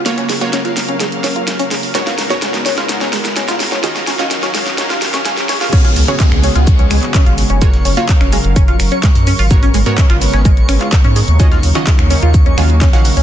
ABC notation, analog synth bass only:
X:1
M:4/4
L:1/16
Q:1/4=127
K:Dbmix
V:1 name="Analog synth bass" clef=bass
z16 | z16 | z16 | z2 D,, z2 D,, z D,,3 D,, z2 A,,, z G,,,- |
G,,,2 G,,, z2 G,,, z G,,,3 G,,, z2 G,, z A,,,- | A,,,2 A,,, z2 A,,, z A,,,3 A,,, z2 A,, z E,,- | E,,2 E,, z2 E,, z E,,3 E,,3 B,,, z D,, |]